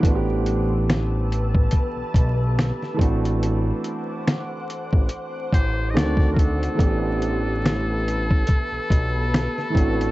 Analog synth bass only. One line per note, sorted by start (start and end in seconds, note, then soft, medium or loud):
0.03 1.68 A1 loud
1.96 2.03 B1 soft
2.15 2.72 B1 loud
2.99 3.73 A1 medium
4.93 5.09 A1 medium
5.53 5.97 A1 medium
5.95 6.68 D2 loud
6.79 8.44 A1 loud
8.72 8.80 B1 soft
8.90 9.48 B1 medium
9.75 10.11 A1 loud